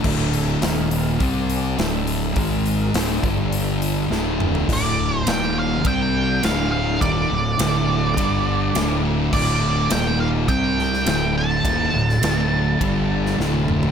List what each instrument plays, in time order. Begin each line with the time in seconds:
Already playing: tonewheel organ D4 A4 E5
0.04 fingered electric bass D1, distorted electric guitar D2 A2 D3, kick, crash
0.33 open hi-hat
0.61 fingered electric bass D#1, distorted electric guitar D#2 A#2 D#3, tonewheel organ D#4 A#4, snare, open hi-hat
0.65 tonewheel organ F5
0.91 open hi-hat
1.20 fingered electric bass C2, distorted electric guitar C3 G3 C4, tonewheel organ C4 G4 D5, kick, open hi-hat
1.50 open hi-hat
1.77 fingered electric bass D1, distorted electric guitar D2 A2 D3, tonewheel organ D4 A4, snare, open hi-hat
1.81 tonewheel organ E5
2.07 open hi-hat
2.35 fingered electric bass G#1, distorted electric guitar G#2 D#3 G#3, tonewheel organ G#3 D#4 A#4, kick, open hi-hat
2.66 open hi-hat
2.94 fingered electric bass D1, distorted electric guitar D2 A2 D3, tonewheel organ D3 A3 E4, snare, open hi-hat
3.10 snare
3.21 fingered electric bass G1, distorted electric guitar G2 D3, tonewheel organ G3 D4 A4, kick, open hi-hat
3.25 distorted electric guitar G3
3.53 open hi-hat
3.82 open hi-hat
4.10 fingered electric bass D1, distorted electric guitar D2 A2 D3, tonewheel organ D3 A3 E4, snare
4.40 mid tom
4.55 floor tom
4.68 fingered electric bass D1, distorted electric guitar D2 A2 D3, tonewheel organ D3 A3 E4, kick, crash
4.73 lead electric guitar D5
5.18 lead electric guitar C5
5.26 fingered electric bass D#1, distorted electric guitar D#2 A#2 D#3, tonewheel organ D#3 A#3 F4, lead electric guitar G5, snare, ride bell
5.59 lead electric guitar F5
5.84 fingered electric bass C2, distorted electric guitar C3 G3 C4, tonewheel organ C3 G3 D4, lead electric guitar G5, kick, ride bell
6.43 fingered electric bass D1, distorted electric guitar D2 A2 D3, tonewheel organ D3 A3 E4, lead electric guitar F5, snare, ride bell
6.72 lead electric guitar F5
7.00 fingered electric bass D#1, distorted electric guitar D#2 A#2 D#3, lead electric guitar D5, kick, ride bell
7.31 fingered electric bass D1, distorted electric guitar D2 A2
7.59 fingered electric bass D1, distorted electric guitar D2 A2 D3, snare, ride bell
8.17 fingered electric bass G1, distorted electric guitar G2 D3 G3, tonewheel organ G3 D4 A4, kick, ride bell
8.75 fingered electric bass D1, distorted electric guitar D2 A2 D3, tonewheel organ D3 A3 E4, snare, ride bell
9.33 fingered electric bass D1, distorted electric guitar D2 A2 D3, lead electric guitar D5, kick, crash
9.90 fingered electric bass D#1, distorted electric guitar D#2 A#2 D#3, tonewheel organ D#3 A#3 F4, lead electric guitar G5, snare, ride bell
10.20 lead electric guitar F5
10.48 fingered electric bass C2, distorted electric guitar C3 G3 C4, tonewheel organ C3 G3 D4, lead electric guitar G5, kick, ride bell
10.79 snare
10.94 snare
11.06 fingered electric bass D1, distorted electric guitar D2 A2 D3, tonewheel organ D3 A3 E4, snare, ride bell
11.38 lead electric guitar A5
11.64 fingered electric bass D#1, distorted electric guitar D#2 A#2 D#3, kick, ride bell
11.94 fingered electric bass D1, distorted electric guitar D2 A2
12.09 snare
12.21 fingered electric bass D1, distorted electric guitar D2 A2 D3, snare, ride bell
12.80 fingered electric bass G1, distorted electric guitar G2 D3 G3, tonewheel organ G3 D4 A4, kick, ride bell
13.26 snare
13.38 fingered electric bass D1, distorted electric guitar D2 A2 D3, tonewheel organ D3 E4, snare
13.54 high tom
13.68 mid tom
13.83 floor tom